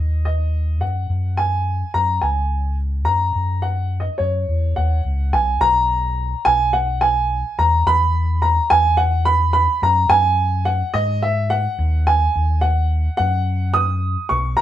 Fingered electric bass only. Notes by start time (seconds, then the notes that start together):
Already playing: D#2
0.81 F#2
1.10 F#2
1.94 F#2
2.23 C#2
3.08 F#2
3.35 F#2
4.20 F#2
4.48 E2
4.77 D#2
5.05 C#2
5.33 B1
5.61 B1
6.46 B1
7.59 E2
7.86 E2
8.71 E2
9.82 F#2
10.09 F#2
10.94 G#2
11.79 D#2
12.35 D#2
13.19 F#2
14.30 B1